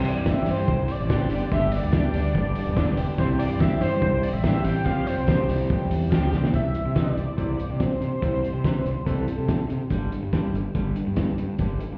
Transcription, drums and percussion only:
0.05 open hi-hat, tambourine
0.26 kick, snare, tambourine
0.46 open hi-hat, tambourine
0.68 kick
0.88 open hi-hat, tambourine
1.10 kick, snare, tambourine
1.30 open hi-hat
1.52 kick, tambourine
1.72 open hi-hat, tambourine
1.93 kick, snare, tambourine
2.13 open hi-hat, tambourine
2.35 kick
2.55 open hi-hat, tambourine
2.77 kick, snare, tambourine
2.97 open hi-hat, tambourine
3.18 kick, tambourine
3.40 open hi-hat, tambourine
3.60 kick, snare, tambourine
3.81 open hi-hat, tambourine
4.02 kick
4.23 open hi-hat, tambourine
4.44 kick, snare, tambourine
4.64 open hi-hat, tambourine
4.86 kick, tambourine
5.06 open hi-hat, tambourine
5.27 kick, snare, tambourine
5.49 open hi-hat, tambourine
5.70 kick, tambourine
5.91 open hi-hat
6.12 kick, snare, tambourine
6.33 snare, tambourine
6.44 snare
6.54 kick, closed hi-hat
6.74 closed hi-hat
6.96 kick, snare, closed hi-hat
7.17 closed hi-hat
7.38 kick, closed hi-hat
7.59 closed hi-hat
7.80 kick, snare, closed hi-hat
8.02 closed hi-hat
8.22 kick, closed hi-hat
8.44 closed hi-hat
8.64 kick, snare, closed hi-hat
8.86 closed hi-hat
9.07 kick, closed hi-hat
9.28 closed hi-hat
9.49 kick, snare, closed hi-hat
9.70 closed hi-hat
9.90 kick, closed hi-hat
10.12 closed hi-hat
10.33 kick, snare, closed hi-hat
10.55 closed hi-hat
10.75 kick, closed hi-hat
10.96 closed hi-hat
11.16 kick, snare, closed hi-hat
11.38 closed hi-hat
11.59 kick, closed hi-hat
11.80 closed hi-hat

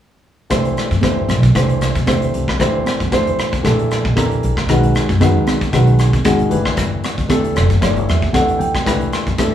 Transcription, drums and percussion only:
0.50 kick, cross-stick, closed hi-hat, muted conga
0.65 closed hi-hat
0.75 cross-stick, closed hi-hat, muted conga
0.91 kick, closed hi-hat
1.01 kick, cross-stick, closed hi-hat, high conga
1.29 cross-stick, closed hi-hat, muted conga, high conga
1.43 kick, closed hi-hat
1.54 kick, cross-stick, closed hi-hat, muted conga
1.69 closed hi-hat
1.81 cross-stick, closed hi-hat
1.95 kick, closed hi-hat
2.06 kick, cross-stick, closed hi-hat, high conga
2.22 closed hi-hat
2.34 closed hi-hat
2.48 kick, cross-stick
2.60 kick, cross-stick, closed hi-hat, muted conga
2.85 cross-stick, closed hi-hat, muted conga, high conga
3.00 kick, closed hi-hat
3.12 kick, cross-stick, closed hi-hat, high conga
3.27 closed hi-hat
3.39 cross-stick, closed hi-hat, muted conga
3.53 kick, closed hi-hat
3.65 kick, cross-stick, closed hi-hat, muted conga, low conga
3.79 closed hi-hat
3.91 cross-stick, closed hi-hat
4.05 kick
4.16 kick, cross-stick, closed hi-hat, high conga
4.31 closed hi-hat
4.43 closed hi-hat
4.57 kick, cross-stick, closed hi-hat
4.68 kick, cross-stick, closed hi-hat, muted conga
4.83 closed hi-hat
4.94 cross-stick, closed hi-hat, muted conga
5.09 kick, closed hi-hat
5.20 kick, cross-stick, closed hi-hat, high conga
5.47 cross-stick, closed hi-hat, muted conga, high conga
5.61 kick, closed hi-hat
5.73 kick, cross-stick, closed hi-hat
5.87 closed hi-hat
5.99 cross-stick, closed hi-hat
6.13 kick, closed hi-hat
6.25 kick, cross-stick, closed hi-hat, high conga
6.39 closed hi-hat
6.51 closed hi-hat
6.65 kick, cross-stick
6.77 kick, cross-stick, closed hi-hat, muted conga
7.04 cross-stick, closed hi-hat, muted conga, high conga
7.18 kick, closed hi-hat
7.30 kick, cross-stick, closed hi-hat, high conga
7.44 closed hi-hat
7.55 cross-stick, closed hi-hat, muted conga
7.70 kick, closed hi-hat
7.82 kick, cross-stick, closed hi-hat, muted conga, low conga
7.97 closed hi-hat
8.09 cross-stick, closed hi-hat
8.22 kick
8.33 kick, cross-stick, closed hi-hat, high conga
8.49 closed hi-hat
8.61 closed hi-hat
8.75 kick, cross-stick, closed hi-hat
8.86 kick, cross-stick, closed hi-hat, muted conga
9.01 closed hi-hat
9.13 cross-stick, closed hi-hat, muted conga
9.27 kick, closed hi-hat
9.38 kick, cross-stick, closed hi-hat, high conga

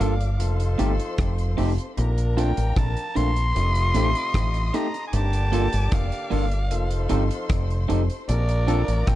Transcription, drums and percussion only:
0.01 closed hi-hat
0.21 closed hi-hat
0.40 closed hi-hat
0.60 closed hi-hat
0.79 closed hi-hat
1.00 closed hi-hat
1.18 kick, cross-stick, closed hi-hat
1.38 closed hi-hat
1.58 open hi-hat
1.78 closed hi-hat
1.98 closed hi-hat
2.18 closed hi-hat
2.38 closed hi-hat
2.57 closed hi-hat
2.76 kick, cross-stick, closed hi-hat
2.97 closed hi-hat
3.16 closed hi-hat
3.36 closed hi-hat
3.56 closed hi-hat
3.75 closed hi-hat
3.95 closed hi-hat
4.15 closed hi-hat
4.34 kick, cross-stick, closed hi-hat
4.54 closed hi-hat
4.74 closed hi-hat
4.94 closed hi-hat
5.13 closed hi-hat
5.33 closed hi-hat
5.53 closed hi-hat
5.73 closed hi-hat
5.92 kick, cross-stick, closed hi-hat
6.12 closed hi-hat
6.31 open hi-hat
6.51 closed hi-hat
6.71 closed hi-hat
6.91 closed hi-hat
7.09 closed hi-hat
7.31 closed hi-hat
7.49 kick, cross-stick, closed hi-hat
7.70 closed hi-hat
7.90 closed hi-hat
8.10 closed hi-hat
8.29 closed hi-hat
8.49 closed hi-hat
8.68 closed hi-hat
8.88 closed hi-hat
9.07 kick, cross-stick, closed hi-hat

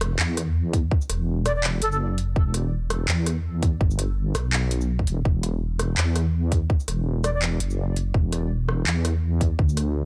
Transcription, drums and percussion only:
0.01 cross-stick, closed hi-hat
0.19 clap
0.37 cross-stick, closed hi-hat
0.73 kick, closed hi-hat
0.91 kick
1.01 shaker
1.10 cross-stick, closed hi-hat
1.46 cross-stick, closed hi-hat, shaker
1.64 clap
1.82 closed hi-hat
1.92 shaker
2.18 closed hi-hat
2.36 kick
2.54 cross-stick, closed hi-hat
2.90 cross-stick, closed hi-hat
3.08 clap
3.26 cross-stick, closed hi-hat
3.63 kick, closed hi-hat
3.81 kick
3.91 shaker
3.99 cross-stick, closed hi-hat
4.35 cross-stick, closed hi-hat, shaker
4.53 clap
4.71 closed hi-hat
4.81 shaker
4.99 kick
5.07 closed hi-hat
5.25 kick
5.43 cross-stick, closed hi-hat
5.79 cross-stick, closed hi-hat
5.98 clap
6.16 cross-stick, closed hi-hat
6.52 kick, closed hi-hat
6.70 kick
6.80 shaker
6.88 cross-stick, closed hi-hat
7.24 cross-stick, closed hi-hat, shaker
7.42 clap
7.60 closed hi-hat
7.70 shaker
7.96 closed hi-hat
8.14 kick
8.32 cross-stick, closed hi-hat
8.69 cross-stick
8.87 clap
9.05 cross-stick, closed hi-hat
9.41 kick, closed hi-hat
9.59 kick
9.69 shaker
9.77 cross-stick, closed hi-hat

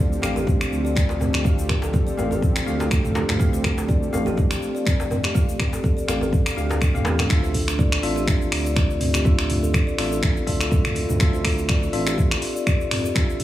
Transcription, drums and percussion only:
0.13 shaker
0.22 finger snap, djembe tone, shaker
0.36 djembe tone, shaker
0.47 kick, shaker
0.61 finger snap, shaker
0.73 shaker
0.86 shaker
0.96 finger snap, kick, shaker
1.09 djembe slap, shaker
1.21 mid tom, djembe tone, shaker
1.34 finger snap, shaker
1.45 kick, shaker
1.59 shaker
1.69 finger snap, kick, djembe tone, shaker
1.82 djembe slap, shaker
1.94 kick, shaker
2.08 shaker
2.18 djembe tone, shaker
2.32 djembe tone, shaker
2.42 kick, shaker
2.56 finger snap, shaker
2.68 shaker
2.80 djembe slap, shaker
2.91 finger snap, kick, shaker
3.04 mid tom, shaker
3.15 djembe slap, shaker
3.29 finger snap, mid tom, djembe slap, shaker
3.40 kick, shaker
3.54 shaker
3.64 finger snap, kick, djembe tone, shaker
3.78 djembe slap, shaker
3.89 kick, shaker
4.03 shaker
4.14 djembe tone, shaker
4.27 djembe tone, shaker
4.38 kick, shaker
4.51 finger snap, shaker
4.62 shaker
4.76 shaker
4.86 finger snap, kick, shaker
5.00 djembe slap, shaker
5.11 mid tom, djembe tone, shaker
5.24 finger snap, shaker
5.35 kick, shaker
5.49 shaker
5.60 finger snap, kick, mid tom, djembe tone, shaker
5.73 djembe slap, shaker
5.84 kick, shaker
5.98 shaker
6.08 finger snap, djembe tone, shaker
6.21 djembe tone, shaker
6.33 kick, shaker
6.46 finger snap, shaker
6.58 shaker
6.71 djembe slap, shaker
6.81 finger snap, kick, shaker
6.95 mid tom, shaker
7.05 djembe slap, shaker
7.19 finger snap, mid tom, djembe slap, shaker
7.30 finger snap, kick, shaker
7.44 shaker
7.54 kick, open hi-hat
7.68 finger snap, shaker
7.79 kick, shaker
7.92 finger snap, shaker
8.03 open hi-hat
8.17 shaker
8.28 finger snap, kick, shaker
8.42 shaker
8.52 finger snap, open hi-hat
8.66 shaker
8.76 finger snap, kick, shaker
8.90 shaker
9.01 mid tom, open hi-hat
9.14 finger snap, shaker
9.25 kick, shaker
9.39 finger snap, shaker
9.50 mid tom, open hi-hat
9.64 shaker
9.74 finger snap, kick, shaker
9.88 shaker
9.98 finger snap, open hi-hat
10.12 shaker
10.23 finger snap, kick, shaker
10.37 shaker
10.47 kick, open hi-hat
10.61 finger snap, shaker
10.72 kick, shaker
10.85 finger snap, mid tom, shaker
10.96 open hi-hat
11.09 mid tom, shaker
11.20 finger snap, kick, shaker
11.34 shaker
11.45 finger snap, kick, open hi-hat
11.58 shaker
11.69 finger snap, kick, shaker
11.83 shaker
11.93 open hi-hat
12.07 finger snap, shaker
12.18 kick, shaker
12.31 finger snap, shaker
12.42 open hi-hat
12.56 shaker
12.67 finger snap, kick, shaker
12.81 shaker
12.91 finger snap, mid tom, open hi-hat
13.05 shaker
13.16 finger snap, kick, shaker
13.30 shaker
13.40 mid tom, open hi-hat

